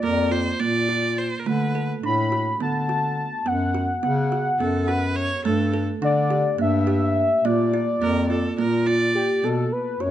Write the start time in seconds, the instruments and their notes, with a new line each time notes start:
Already playing: soft synth lead D5
0.03 bass clarinet F2, kalimba A#3, viola A#4
0.31 kalimba F4, viola C5
0.60 bass clarinet A#2, kalimba A#3, viola D5
0.89 kalimba F4
1.18 viola C5
1.40 viola A#4
1.45 bass clarinet D3, kalimba A3, viola B4
1.75 kalimba A4
2.03 bass clarinet A2, kalimba D4, soft synth lead B5
2.32 kalimba F#4
2.60 bass clarinet D3, kalimba B3, soft synth lead A5
2.89 kalimba F#4
3.45 bass clarinet F#2, kalimba B3, soft synth lead F#5
3.74 kalimba F#4
4.03 bass clarinet C#3, kalimba B3, soft synth lead F#5
4.32 kalimba F#4
4.59 bass clarinet F#2, kalimba B3, viola A4
4.88 kalimba F#4, viola B4
5.16 viola C#5
5.45 bass clarinet G2, kalimba A3, viola A4
5.74 kalimba A4
6.02 bass clarinet D3, kalimba D4, soft synth lead D5
6.30 kalimba G4
6.58 bass clarinet G2, kalimba A#3, soft synth lead E5
6.87 kalimba G4
7.45 bass clarinet A#2, kalimba A#3, soft synth lead D5
7.74 kalimba F4
8.01 bass clarinet F2, kalimba A#3, viola A#4
8.30 kalimba F4, viola A4
8.58 bass clarinet A#2, kalimba A#3, viola A#4
8.87 kalimba F4, viola D5
9.15 soft synth lead G4
9.43 bass clarinet B2, kalimba B3, soft synth lead A4
9.72 soft synth lead B4
10.00 bass clarinet F#2, kalimba F#4, soft synth lead C#5